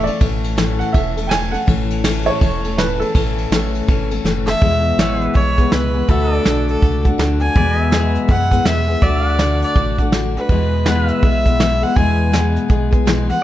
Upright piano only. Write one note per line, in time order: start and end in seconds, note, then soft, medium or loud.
0.04 0.18 D5 medium
0.79 0.94 F#5 medium
0.92 1.28 E5 medium
1.27 1.31 G5 medium
1.27 1.54 G#5 loud
1.51 1.66 F#5 medium
2.26 2.79 C#5 loud
2.78 3.01 B4 medium
3.00 4.43 A4 medium